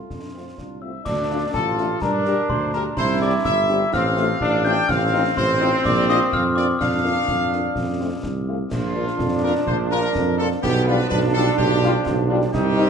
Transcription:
Already playing: A3 F4
0.10 F2, concert bass drum, snare
0.33 A3 C4 F4
0.58 C2 D4, concert bass drum, snare
0.81 A3 C4 F4 E5 E6
1.05 D2 D4 D5 D6, concert bass drum, snare, crash
1.29 A3 D4 F4
1.53 A1 F4 A4 A5, concert bass drum, snare
1.78 A3 D4 F4, snare
2.01 G2 D4 A#4 A#5, concert bass drum, snare
2.25 G3 D4 G4, snare
2.49 D2 C5 C6, concert bass drum
2.73 G3 D4 G4 A#4 A#5, snare
2.97 C2 E4 C5 C6, concert bass drum, snare, crash
3.21 G3 C4 G4 D5 D6
3.45 G1 E5 E6, concert bass drum, snare
3.69 G3 C4 G4, snare
3.93 A1 C4 F5 F6, concert bass drum, snare
4.17 A3 C4 F4, snare
4.41 A1 D4, concert bass drum
4.65 A3 C4 F4 G5 G6, snare
4.88 A1 C4 F5 F6, concert bass drum, snare, crash
5.13 C4 D#4 F4
5.37 A1 C5 C6, concert bass drum, snare
5.60 C4 D#4 F4, snare
5.85 A#1 D5 D6, concert bass drum, snare
6.08 A#3 D4 F4 D#5 D#6, snare
6.33 F2 F5 F6, concert bass drum
6.56 A#3 D4 F4 D5 D6, snare
6.79 F2 D4 F5 F6, concert bass drum, snare, crash
7.04 A#3 D4 F4
7.28 F2, concert bass drum, snare
7.51 A#3 D4 F4, snare
7.76 F2, concert bass drum, snare
7.99 A3 C4 F4
8.23 C2, concert bass drum, snare
8.47 A3 C4 F4
8.70 A#1 F3 D4 F4, concert bass drum, snare, crash
8.95 A#3 D4 F4
9.07 snare
9.18 F2, concert bass drum, snare
9.42 A#3 D4 F4 A#4
9.66 A#1 C5, concert bass drum
9.90 A#3 D4 F4 A#4, snare
10.14 F2, concert bass drum, snare
10.38 A#3 D4 F4 A4
10.52 snare
10.62 B1 F3 B3 D4 G4, concert bass drum, snare, crash
10.86 G3 D4 F4 B4
11.00 snare
11.09 B1 D4 B4, concert bass drum, snare
11.34 G3 D4 F4 A4
11.57 B1 G4, concert bass drum
11.82 G3 D4 F4, snare
12.06 B1, concert bass drum, snare
12.30 G3 D4 F4
12.42 snare
12.53 C2 D#3 C4 D#4 G4, concert bass drum, snare, crash
12.78 G3 C4 D#4

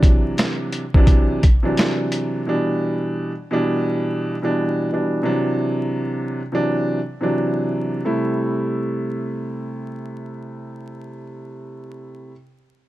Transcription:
Already playing: C3 E3 F#3 D4
0.03 kick, closed hi-hat
0.38 snare, closed hi-hat
0.72 closed hi-hat
0.94 C3 E3 F#3 D4, kick
1.07 kick, closed hi-hat
1.43 kick, closed hi-hat
1.63 C3 E3 F#3 D4
1.77 snare, closed hi-hat
2.12 closed hi-hat
2.46 B2 E3 G3 D4
3.51 B2 E3 G3 D4
4.42 B2 E3 G3 D4
4.91 B2 E3 G3 D4
5.23 C3 E3 F#3 D4
6.52 C3 E3 F#3 D4
7.21 C3 E3 F#3 D4
8.05 C3 G3 A3 E4

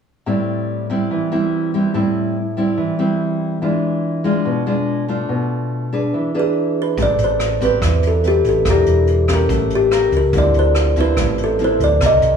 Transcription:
0.26 A2 G3 C4 E4
0.90 G3 C4 E4
1.11 E3
1.32 G3 C4 E4
1.74 G3 C4 E4
1.94 A2 G3 C4 E4
2.57 G3 C4 E4
2.77 E3
2.99 G3 C4 E4
3.62 E3 G#3 D4 F4
4.24 G#3 D4 F4
4.45 B2
4.66 G#3 D4 F4
5.08 A3 D4 F4
5.29 B2
5.93 D4 G#4 B4
6.14 E3
6.34 D4 G#4 B4
6.39 G#4
6.82 B4
6.97 A1 A3 C4 G4, kick, closed hi-hat
7.02 D5
7.18 A1, closed hi-hat
7.24 C5
7.40 cross-stick, closed hi-hat
7.61 C4 G4 B4, kick, closed hi-hat
7.65 B4
7.82 E2 E3, kick, cross-stick, closed hi-hat
8.03 closed hi-hat
8.07 A4
8.24 C4 G4 B4, closed hi-hat
8.28 G4
8.44 A1, kick, closed hi-hat
8.49 A4
8.65 E1 E3 D4 G4 A#4, kick, cross-stick, closed hi-hat
8.70 G4
8.86 E1, closed hi-hat
9.07 closed hi-hat
9.28 C#4 G4, kick, cross-stick, closed hi-hat
9.34 A#4
9.49 A1 A3, kick, closed hi-hat
9.70 closed hi-hat
9.75 G4
9.91 C#4 G4 A#4, cross-stick, closed hi-hat
10.12 C#2, kick, closed hi-hat
10.17 A#4
10.33 D2 D3 F3 C4 E4, kick, closed hi-hat
10.38 D5
10.54 D2, closed hi-hat
10.59 C5
10.75 cross-stick, closed hi-hat
10.96 F3 C4 E4, kick, closed hi-hat
11.01 B4
11.17 A1 A2, kick, cross-stick, closed hi-hat
11.38 closed hi-hat
11.44 A4
11.59 F3 C4 E4, closed hi-hat
11.64 C5
11.80 D2 D5, kick, closed hi-hat
12.01 C2 C3 D#3 A#3, kick, cross-stick, closed hi-hat
12.06 D#5
12.22 C2, closed hi-hat

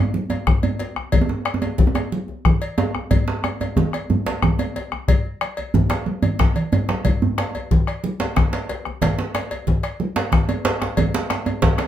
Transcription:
0.14 high conga
0.30 cowbell, djembe tone, high conga
0.47 bombo rim, bombo low, low conga, djembe bass
0.63 cowbell, djembe bass
0.79 cowbell, djembe slap
0.96 bombo rim, djembe slap, djembe tone
1.12 bombo low, cowbell, high conga, low conga, djembe bass
1.21 djembe tone
1.29 djembe tone
1.45 bombo rim, cowbell, djembe slap
1.54 djembe tone
1.62 cowbell, djembe tone
1.78 bombo low, djembe slap, low conga, djembe bass
1.87 djembe tone
1.95 bombo rim, cowbell, djembe tone
2.12 high conga
2.28 djembe tone, high conga
2.45 bombo rim, bombo low, djembe bass, low conga
2.62 cowbell
2.78 cowbell, djembe slap, djembe tone
2.95 bombo rim, djembe slap, djembe tone
3.11 bombo low, cowbell, high conga, djembe bass, low conga
3.28 djembe slap
3.44 bombo rim, cowbell, djembe tone
3.60 cowbell, djembe tone
3.76 bombo low, djembe slap, djembe tone, djembe bass, low conga
3.93 bombo rim, cowbell
4.10 high conga, djembe bass
4.26 cowbell, djembe slap, djembe tone, high conga
4.42 bombo rim, bombo low, djembe tone, djembe bass, low conga
4.59 cowbell, djembe tone
4.76 cowbell, djembe slap
4.92 bombo rim, djembe slap, djembe tone
5.08 bombo rim, bombo low, cowbell, djembe slap, high conga, low conga, djembe bass
5.25 djembe slap
5.41 bombo rim, cowbell, djembe slap, high conga
5.57 cowbell, djembe slap, djembe tone
5.74 bombo low, djembe slap, djembe bass, low conga
5.90 bombo rim, cowbell, djembe slap, high conga
6.06 high conga
6.22 bombo rim, cowbell, djembe slap, djembe tone, djembe bass, low conga
6.39 bombo rim, bombo low, djembe slap, low conga, djembe bass
6.56 cowbell, low conga
6.72 bombo rim, cowbell, djembe slap, high conga, djembe bass
6.89 bombo rim, djembe slap, high conga, djembe tone
7.05 bombo low, cowbell, high conga, low conga, djembe bass
7.22 djembe bass
7.38 bombo rim, cowbell, djembe slap
7.55 cowbell, djembe tone
7.71 bombo low, djembe slap, djembe bass, low conga
7.87 bombo rim, cowbell
8.04 high conga
8.20 cowbell, djembe slap, djembe tone
8.36 bombo rim, bombo low, djembe slap, low conga, djembe bass
8.53 cowbell, djembe slap
8.69 cowbell, djembe slap
8.85 bombo rim, djembe slap, djembe tone
9.02 bombo low, cowbell, djembe slap, high conga, low conga, djembe bass
9.19 djembe slap
9.35 bombo rim, cowbell, djembe slap
9.51 cowbell, djembe tone
9.67 bombo low, djembe slap, low conga
9.83 bombo rim, cowbell
10.00 high conga
10.16 cowbell, djembe slap, high conga
10.32 bombo rim, bombo low, djembe slap, low conga, djembe bass
10.49 cowbell, djembe tone
10.65 cowbell, djembe slap
10.82 bombo rim, djembe slap, djembe tone
10.97 bombo low, cowbell, high conga, djembe tone, low conga, djembe bass
11.14 djembe slap
11.30 bombo rim, cowbell, djembe slap
11.46 cowbell, djembe tone
11.62 bombo low, djembe slap, low conga, djembe bass
11.78 bombo rim, cowbell, djembe slap

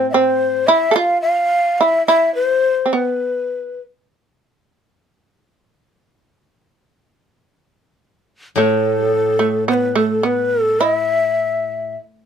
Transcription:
Already playing: A2 A3 B3 C4 E4
0.10 C5 E5
0.14 C4
0.67 E4 E5
0.91 A4 F5
0.96 F4
1.22 F5
1.78 E4 F5
1.83 E5
2.07 E4 E5
2.35 C5
2.86 C4
2.93 B3 B4
8.56 A2 A3 A4
9.11 F3
9.39 A3
9.68 B3 C5
9.74 B4
9.95 A3 A4
10.23 B3 B4
10.62 A4
10.81 E4 E5

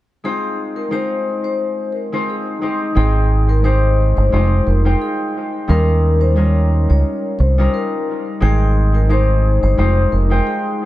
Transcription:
0.24 G#3 C4 D#4 F4 G#4 C5
0.76 A#4
0.90 G#3 C4 D#4 F4 C5
1.44 C5
1.92 A#4
2.12 G#3 C4 D#4 F4 C5
2.30 G#4
2.62 G#3 C4 D#4 G4 C5
2.95 G#1 G#3 C4 D#4 G#4 C5 G5
3.49 A#4
3.64 G#3 C4 D#4 G4 C5
4.17 G1 C5
4.32 F1 G#3 D#4 F4 G4 C5
4.67 F1 A#4
4.85 G#3 D#4 F4 C5 G5
5.02 G#4
5.68 D#2 G3 C#4 D#4 F4 A#4
6.21 C5
6.36 G3 C#4 D#4 F4 A#4 C#5
6.90 C#2 C#5
7.39 C2 C5
7.58 G3 C#4 D#4 F4 A#4
7.74 A#4
8.40 G#1 G#3 C4 D#4 G#4 C5 G5
8.95 A#4
9.09 G#3 C4 D#4 G4 C5
9.63 G1 C5
9.77 F1 G#3 D#4 F4 G4 C5
10.12 F1 A#4
10.30 G#3 D#4 F4 C5 G5
10.47 G#4

